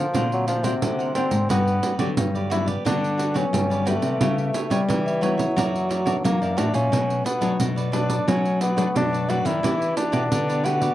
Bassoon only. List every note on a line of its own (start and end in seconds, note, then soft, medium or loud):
0.00 0.28 F3 medium
0.33 0.47 F#3 medium
0.48 0.65 F3 medium
0.64 1.14 C3 medium
1.15 1.47 C4 medium
1.50 1.97 B3 medium
2.52 2.67 E4 medium
2.86 3.38 D4 medium
3.36 3.90 C#4 medium
3.88 4.71 A3 medium
4.72 5.24 G3 medium
5.23 6.24 F#3 medium
6.25 6.60 A#3 medium
6.58 6.75 D4 medium
6.75 7.22 C#4 medium
7.26 7.64 B3 medium
7.94 8.30 D4 medium
8.28 8.61 C#4 medium
8.62 8.93 B3 medium
8.97 9.31 D4 loud
9.30 9.48 F#4 medium
9.46 9.97 E4 loud
9.97 10.66 D4 medium
10.65 10.94 F#4 medium